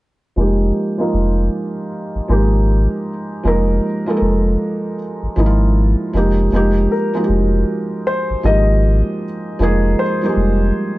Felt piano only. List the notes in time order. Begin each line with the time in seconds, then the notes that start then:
0.36 F3 G#3 A#3 D#4
0.40 G4
0.98 F3 G#3 A#3 D#4 F4
2.28 F3 G#3 A#3 D#4 G4
3.43 F3 G#3 A#3 D#4
3.48 A#4
4.06 F3 G#3 A#3 D#4 A4
4.17 A#4
5.36 F3 G#3 A#3 D#4 E4
5.46 F4
6.13 F3 G#3 A#3 D#4 G4
6.52 F3 G#3 A#3 D#4
6.56 G4
7.13 F3 G#3 A#3 D#4 F#4
7.24 G4
8.43 F3 G#3 A#3 D#4 G4
9.59 F3 G#3 A#3 D#4
9.63 G#4
10.21 F3 G3 A#3 D#4
10.25 G#3 G4